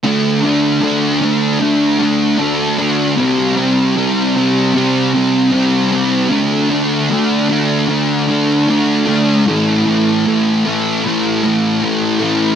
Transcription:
\new Staff \with { instrumentName = "Distorted electric guitar" } { \time 4/4 \key c \lydian \tempo 4 = 76 <d a d'>8 <a d'>8 <d a d'>8 <a d'>8 <d a d'>8 <a d'>8 <d a d'>8 <a d'>8 | <c g c'>8 <g c'>8 <c g c'>8 <g c'>8 <c g c'>8 <g c'>8 <c g c'>8 <g c'>8 | <d a d'>8 <a d'>8 <d a d'>8 <a d'>8 <d a d'>8 <a d'>8 <d a d'>8 <a d'>8 | <a, e a>8 <e a>8 <a, e a>8 <e a>8 <a, e a>8 <e a>8 <a, e a>8 <e a>8 | }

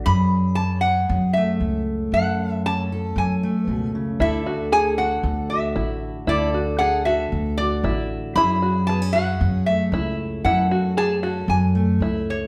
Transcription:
<<
  \new Staff \with { instrumentName = "Resonator guitar played with a steel bar" } { \time 4/4 \key fis \minor \tempo 4 = 115 b''4 a''8 fis''4 e''4 r8 | fis''4 a''4 gis''4. r8 | e''4 gis''8 fis''4 e''4 r8 | d''4 fis''8 e''4 d''4 r8 |
b''4 a''8 fis''4 e''4 r8 | fis''4 a''4 gis''4. cis''8 | }
  \new Staff \with { instrumentName = "Five-string banjo" } { \time 4/4 \key fis \minor r1 | r1 | e'8 fis'8 gis'8 fis'4 r8 e'4 | e'8 fis'8 gis'8 fis'4 r8 e'4 |
e'8 fis'8 gis'8 fis'4 r8 e'4 | e'8 fis'8 gis'8 fis'4 r8 e'4 | }
  \new Staff \with { instrumentName = "Steel-string acoustic guitar" } { \time 4/4 \key fis \minor << { gis'4 cis'8 gis'4 a4. | a'4 cis'8 a'4 a4. | a'4 a'8 a'4 fis'4. | a'4 a'8 a'4 fis'4. |
gis'4 b16 cis'16 gis'4 a4. | a'4 cis'8 a'4 a4. | } \\ { fis,1 | fis,2. b,8 cis8 | d1 | d1 |
fis,1 | fis,1 | } >> }
  \new Staff \with { instrumentName = "Upright bass" } { \clef bass \time 4/4 \key fis \minor fis,2 fis,4 cis,4 | fis,2 fis,4 cis,4 | d,2 d,4 a,,4 | d,2 d,4 a,,4 |
fis,2 fis,4 cis,4 | fis,2 fis,4 cis,4 | }
>>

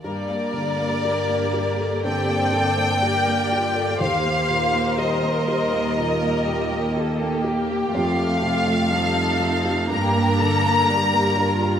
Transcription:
<<
  \new Staff \with { instrumentName = "Violin section" } { \time 4/4 \key g \minor \tempo 4 = 61 d''2 g''2 | f''4 ees''2~ ees''8 r8 | f''2 bes''2 | }
  \new Staff \with { instrumentName = "Violin section" } { \time 4/4 \key g \minor << { bes'2 d''4 d''4 | c''8 bes'2~ bes'8 g'4~ | g'4 a'4 bes'2 | } \\ { bes'2 a'4 g'4 | c''2 bes'8 g'4.~ | g'2 g'8 a'8 bes'4 | } >> }
  \new Staff \with { instrumentName = "Viola section" } { \time 4/4 \key g \minor << { bes4 g'4 g'8 a'8 bes'8 f'8 | g'4 bes'4 bes'4 a'8 g'8 | f'8 f'8 ees'4 d'4 g'8 f'8 | } \\ { g8 g8 bes4 c'4 bes4 | bes4 g8 g4. bes4 | a4 g8 a8 bes4 g4 | } >> }
  \new Staff \with { instrumentName = "Grand piano" } { \time 4/4 \key g \minor g,16 bes16 d16 bes16 g'16 bes16 g'16 a'16 d16 bes16 d16 bes16 g'16 bes16 g'16 a'16 | ees,16 bes16 bes,16 bes16 g'16 bes16 g'16 bes16 bes,16 bes16 bes,16 bes16 g'16 bes16 g'16 bes16 | f,16 a16 c16 a16 f'16 a16 f'16 g'16 g,16 bes16 d16 bes16 d'16 bes16 d'16 g'16 | }
  \new Staff \with { instrumentName = "Cello section" } { \clef bass \time 4/4 \key g \minor g,1 | ees,1 | f,2 g,2 | }
>>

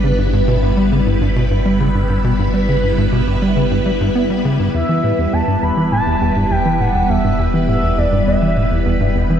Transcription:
<<
  \new Staff \with { instrumentName = "Analog synth lead" } { \time 4/4 \key e \minor \tempo 4 = 102 r1 | r1 | e''4 a''8 b''8 a''4 g''8 fis''8 | e''4 e''8 d''8 e''4. r8 | }
  \new Staff \with { instrumentName = "String machine" } { \time 4/4 \key e \minor << { <g e' b'>1~ | <g e' b'>1~ | <g e' b'>1~ | <g e' b'>1 | } \\ { b1~ | b1 | b1~ | b1 | } >> }
  \new Staff \with { instrumentName = "Analog synth bass" } { \clef bass \time 4/4 \key e \minor cis16 g,16 g,16 b,16 g,16 g16 cis16 g,16 g,16 b,16 g,16 g16 cis16 g,16 g,16 b,16 | g,16 g16 cis16 g,16 g,16 b,16 g,16 g16 cis16 g,16 g16 g,16 b16 g16 cis16 g,16 | e,16 e16 a,16 e,16 e,16 g,16 e,16 e16 a,16 e,16 e,16 g,16 e,16 e16 a,16 e,16 | e,16 g,16 e,16 e16 a,16 e,16 e,16 g,16 e,16 e16 a,16 e,16 e,16 g,16 e,16 e16 | }
  \new Staff \with { instrumentName = "Sub bass" } { \clef bass \time 4/4 \key e \minor g,,1~ | g,,1 | e,,1~ | e,,1 | }
>>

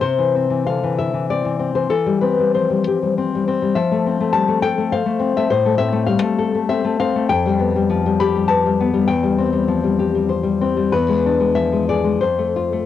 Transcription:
\new Staff \with { instrumentName = "Nylon-string guitar" } { \time 3/4 \key c \major \tempo 4 = 99 << { c''4 f''8 e''8 d''8. c''16 | a'8 b'8 c''4. r8 | e''4 a''8 g''8 f''8. e''16 | c''8 e''8 f''4 e''8 f''8 |
g''4. b''8 a''4 | g''4. r4. | b'4 e''8 d''8 c''4 | } \\ { c16 e16 c'16 e16 d16 e16 e'16 e16 c'16 e16 c'16 e16 | e16 g16 c'16 g16 f16 g16 g'16 g16 c'16 g16 c'16 g16 | f16 a16 c'16 a16 g16 a16 a'16 a16 c''16 a16 c'16 a16 | a,16 a16 c'16 a16 g16 a16 a'16 a16 c'16 a16 c'16 a16 |
f,16 g16 b16 g16 f16 g16 g'16 g16 b'16 g16 b16 g16 | e,16 g16 c'16 g16 f16 g16 g'16 g16 c''16 g16 c'16 g16 | e,16 gis16 d'16 gis16 f16 gis16 gis'16 gis16 f,16 a16 f'16 a16 | } >> }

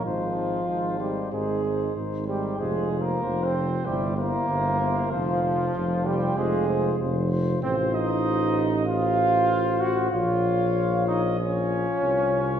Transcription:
<<
  \new Staff \with { instrumentName = "Trumpet" } { \time 4/4 \key f \minor \tempo 4 = 95 c''8 c''8 c''8 c''8 c''8 c''8 c''8 c''8 | c''8 c''8 c''8 c''8 c''8 c''8 c''8 c''8 | c''8 c''8 c''8 c''8 c''8 c''8 c''8 c''8 | \key bes \minor c''2 c''2 |
des''2 des''2 | }
  \new Staff \with { instrumentName = "Flugelhorn" } { \time 4/4 \key f \minor f'4. g'8 aes'4 r8 g'8 | \tuplet 3/2 { aes'4 bes'8~ bes'8 c''4 } g'8 bes'4. | f'4. g'8 aes'4 r4 | \key bes \minor c''8 ees''4. f''4. ges''8 |
f''4. ees''8 des''2 | }
  \new Staff \with { instrumentName = "French horn" } { \time 4/4 \key f \minor ees'8 ees'8 ees'8 ees'8 ees'8 ees'8 ees'8 ees'8 | f'8 f'8 f'8 f'8 e'8 e'8 e'8 e'8 | f'8 f'8 f'8 f'8 f'8 f'8 f'8 f'8 | \key bes \minor f'2 f'2 |
f'2 f'2 | }
  \new Staff \with { instrumentName = "Trombone" } { \time 4/4 \key f \minor f4. g8 aes4 r8 g8 | \tuplet 3/2 { aes4 bes8~ bes8 c'4 } g8 bes4. | f4. g8 aes4 r4 | \key bes \minor c'8 ees'4. f'4. ges'8 |
f'4. ees'8 des'2 | }
  \new Staff \with { instrumentName = "Tuba" } { \clef bass \time 4/4 \key f \minor aes,,4 aes,,4 aes,,4 aes,,4 | f,,4 f,,4 g,,4 g,,4 | f,,4 f,,4 f,,4 f,,4 | \key bes \minor a,,1 |
bes,,2. c,4 | }
>>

